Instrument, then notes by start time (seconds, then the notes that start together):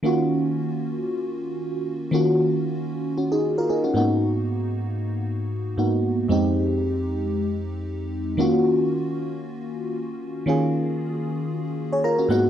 fm electric piano
0.03 D#3 A#3 C#4 F4 F#4
2.11 D#3 A#3 C#4 F4 F#4
3.18 C#4 F#4
3.32 D#4 G#4
3.58 F4 A#4
3.69 D#4 G#4
3.84 C#4 F#4
3.94 G#2 A#3 B3 D#4 F#4
5.77 G#2 A#3 B3 D#4 F#4
6.28 F2 G#3 C4 D#4 G4
8.37 D#3 A#3 C#4 F4 F#4
10.46 D#3 A#3 C#4 F4 G#4
11.93 G#4 C#5
12.04 F4 A#4 A#5
12.18 C#4 F#4
12.29 G#2 A#3 B3 D#4 F#4 F#5